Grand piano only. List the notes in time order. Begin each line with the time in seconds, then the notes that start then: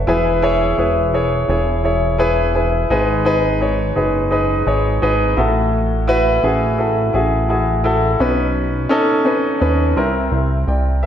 Already playing: E5
0.07 E3 E4 G#4 B4
0.42 E4 G#4 C#5
0.78 E4 G#4 B4
1.13 E4 G#4 C#5
1.49 E4 G#4 C#5
1.84 E4 G#4 C#5
2.18 E4 G#4 B4
2.55 E4 G#4 B4
2.90 G#2 D#4 G#4 B4
3.25 D#4 G#4 B4
3.60 D#4 G#4 C#5
3.96 D#4 G#4 B4
4.31 D#4 G#4 B4
4.67 D#4 G#4 C#5
5.02 D#4 G#4 B4
5.37 A2 E4 F#4 A4
6.07 E4 F#4 B4
6.43 E4 F#4 G#4
6.78 E4 F#4 A4
7.13 E4 F#4 G#4
7.49 E4 F#4 G#4
7.84 E4 F#4 A4
8.20 B2 C#4 D#4 B4
8.89 C#4 D#4 A4
9.25 C#4 D#4 B4
9.60 C#4 D#4 B4
9.96 C3 C4 E4 A#4
10.68 D5 G5
11.03 E5